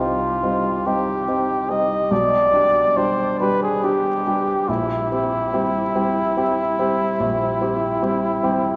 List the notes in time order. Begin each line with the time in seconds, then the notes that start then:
Already playing: C2
0.00 C4 D#4 F4
0.43 G3 C4 D#4
0.86 G3 C4 D#4 G4
1.28 C4 D#4
1.69 G3 C4 D#4 D#5
2.11 B1 D5
2.53 D4 G4
2.97 G3 D4 G4 C5
3.40 G3 D4 G4 B4
3.63 G#4
3.84 D4 G4
4.27 G3 D4 G4
4.69 A#1 E4
5.12 C4 G4
5.53 G3 C4 G4
5.95 G3 C4 G4
6.37 C4 G4
6.79 G3 C4 G4
7.20 A#1
7.61 C4 G4
8.02 G3 C4 G4
8.43 G3 C4 G4